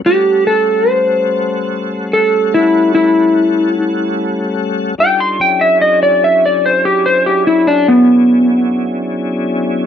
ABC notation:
X:1
M:12/8
L:1/16
Q:3/8=49
K:Amix
V:1 name="Electric slide guitar"
G2 A2 =c6 A2 E2 E8 z2 | g =c' g e ^d =d e d =c G c G E D B,8- B,2 |]
V:2 name="Tonewheel organ"
[G,A,CAf]24 | [G,D^D=FA]2 [^F,C=DE^G]16- [F,CDEG]6 |]